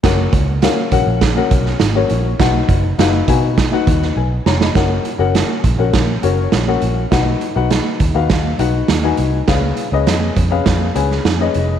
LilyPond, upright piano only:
\new Staff \with { instrumentName = "Upright piano" } { \time 4/4 \key fis \major \tempo 4 = 102 << { r1 | r2. <b' gis''>8 <cis'' ais''>16 <dis'' b''>16~ | <dis'' b''>16 r2. r8. | r1 |
r1 | } \\ { <cis' fis' ais' fis''>8. r16 <cis' fis' ais' eis''>8 <cis' fis' ais' fis''>8 r16 <cis' fis' ais' fis''>8. r16 <cis' fis' ais' cis''>8 r16 | <dis' fis' b' fis''>8. r16 <dis' fis' b' eis''>8 <dis' fis' b' gis''>8 r16 <dis' fis' b' fis''>8. r4 | <cis' fis' ais' fis''>8 r16 <cis' fis' ais' fis''>8. r16 <cis' fis' ais' fis''>8 r16 <cis' fis' ais' cis''>8 r16 <cis' fis' ais' fis''>8 r16 | <dis' fis' b' fis''>8 r16 <dis' fis' b' fis''>8. r16 <dis' fis' b' eis''>8 r16 <dis' fis' b' fis''>8 r16 <dis' fis' b' gis''>8 r16 |
<cis' gis' b' eis''>8 r16 <cis' gis' b' dis''>8. r16 <cis' gis' b' eis''>8 r16 <cis' gis' b' gis''>8 r16 <cis' gis' b' dis''>8 r16 | } >> }